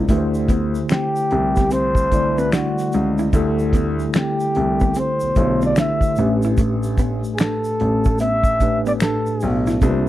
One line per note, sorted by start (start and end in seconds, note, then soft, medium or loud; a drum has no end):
0.00 0.10 C3 medium
0.00 0.11 A#3 medium
0.00 0.10 F4 medium
0.00 0.11 A#4 medium
0.00 0.10 C5 medium
0.08 0.76 D2 medium
0.08 1.58 D3 medium
0.08 1.59 A3 medium
0.08 0.24 A3 medium
0.08 1.59 E4 medium
0.08 1.59 G4 medium
0.08 0.18 B4 medium
0.08 kick loud
0.08 closed hi-hat medium
0.08 shaker medium
0.18 1.63 C5 medium
0.34 shaker soft
0.48 0.64 B3 medium
0.48 kick medium
0.48 closed hi-hat medium
0.48 shaker medium
0.75 shaker soft
0.89 1.05 C4 medium
0.89 1.74 G4 medium
0.89 finger snap medium
0.89 snare loud
0.89 closed hi-hat medium
0.89 shaker medium
0.92 finger snap medium
1.16 shaker soft
1.31 2.49 C2 medium
1.31 muted hollow-body jazz guitar stroke soft
1.31 closed hi-hat medium
1.56 1.65 B3 medium
1.56 kick medium
1.56 snare soft
1.56 shaker soft
1.71 1.86 C4 medium
1.71 2.40 C5 loud
1.71 closed hi-hat medium
1.71 shaker medium
1.95 kick loud
1.95 shaker medium
2.11 3.23 D3 medium
2.11 3.25 G3 medium
2.11 3.24 A3 medium
2.11 3.24 E4 medium
2.11 3.25 D5 medium
2.11 muted hollow-body jazz guitar stroke soft
2.11 kick medium
2.11 closed hi-hat medium
2.11 shaker soft
2.38 2.46 C4 medium
2.38 2.53 B4 medium
2.38 shaker soft
2.52 2.68 D4 medium
2.52 3.15 F#4 medium
2.52 finger snap medium
2.52 snare loud
2.52 closed hi-hat medium
2.52 shaker medium
2.78 snare soft
2.78 shaker soft
2.92 3.27 C#2 medium
2.92 muted hollow-body jazz guitar stroke soft
2.92 closed hi-hat medium
2.92 shaker soft
3.18 3.27 E4 medium
3.18 shaker soft
3.33 4.00 D2 loud
3.33 4.83 D3 medium
3.33 4.83 A3 medium
3.33 3.48 A3 medium
3.33 4.83 E4 medium
3.33 4.84 G4 medium
3.33 4.84 A4 loud
3.33 kick loud
3.33 closed hi-hat medium
3.33 shaker medium
3.59 shaker soft
3.73 3.89 B3 medium
3.73 kick medium
3.73 closed hi-hat medium
3.73 shaker soft
3.99 shaker soft
4.14 4.29 C4 medium
4.14 finger snap medium
4.14 snare loud
4.14 closed hi-hat medium
4.14 shaker medium
4.16 5.01 G4 medium
4.16 finger snap medium
4.40 shaker soft
4.55 4.89 C2 medium
4.55 muted hollow-body jazz guitar stroke soft
4.55 closed hi-hat medium
4.80 4.89 B3 medium
4.80 kick medium
4.80 shaker soft
4.95 5.11 C4 medium
4.95 closed hi-hat medium
4.95 shaker medium
4.99 5.63 C5 medium
5.20 5.28 B1 soft
5.20 shaker medium
5.36 5.70 B1 medium
5.36 6.17 D3 medium
5.36 6.16 A3 medium
5.36 6.18 E4 medium
5.36 6.18 G4 medium
5.36 6.18 C5 medium
5.36 muted hollow-body jazz guitar stroke soft
5.36 kick medium
5.36 closed hi-hat medium
5.36 shaker soft
5.62 5.71 C4 medium
5.62 5.77 D5 medium
5.62 shaker soft
5.76 5.92 D4 medium
5.76 finger snap medium
5.76 snare loud
5.76 closed hi-hat medium
5.76 shaker medium
5.78 6.40 E5 loud
5.78 finger snap medium
6.01 kick medium
6.01 shaker soft
6.16 7.18 A1 medium
6.16 7.66 A2 medium
6.16 7.67 A3 medium
6.16 7.67 D4 medium
6.16 7.67 G4 medium
6.16 7.68 B4 medium
6.16 muted hollow-body jazz guitar stroke soft
6.16 closed hi-hat medium
6.16 shaker soft
6.42 6.53 E4 medium
6.42 shaker soft
6.57 6.73 A3 medium
6.57 kick loud
6.57 closed hi-hat medium
6.57 shaker medium
6.83 shaker soft
6.98 7.13 B3 medium
6.98 kick loud
6.98 closed hi-hat medium
6.98 shaker medium
7.24 shaker soft
7.35 7.42 G#4 medium
7.35 finger snap medium
7.35 shaker medium
7.39 7.54 D4 medium
7.39 8.21 A4 medium
7.39 finger snap medium
7.39 snare loud
7.39 closed hi-hat medium
7.64 shaker soft
7.80 8.98 A1 medium
7.80 muted hollow-body jazz guitar stroke soft
7.80 closed hi-hat medium
8.04 8.14 A3 medium
8.04 kick medium
8.04 shaker soft
8.19 8.35 B3 medium
8.19 8.82 E5 loud
8.19 closed hi-hat medium
8.19 shaker medium
8.44 kick loud
8.44 shaker medium
8.60 9.72 A2 medium
8.60 9.73 A3 medium
8.60 9.73 D4 medium
8.60 9.73 G4 medium
8.60 9.74 B4 medium
8.60 muted hollow-body jazz guitar stroke soft
8.60 kick medium
8.60 closed hi-hat medium
8.60 shaker soft
8.86 8.95 B3 medium
8.86 8.93 D5 medium
8.86 shaker soft
9.00 9.16 D4 medium
9.00 9.63 A4 medium
9.00 finger snap medium
9.00 snare loud
9.00 closed hi-hat medium
9.00 shaker medium
9.02 finger snap medium
9.26 shaker soft
9.41 9.76 B1 medium
9.41 muted hollow-body jazz guitar stroke soft
9.41 open hi-hat soft
9.41 shaker soft
9.67 9.76 E4 medium
9.67 snare soft
9.67 shaker soft
9.81 10.09 C2 loud
9.81 10.09 C3 medium
9.81 9.97 A3 medium
9.81 10.09 A#3 medium
9.81 10.09 D4 medium
9.81 10.09 F4 medium
9.81 9.91 B4 medium
9.81 kick loud
9.81 closed hi-hat medium
9.81 shaker medium
9.91 10.09 C5 medium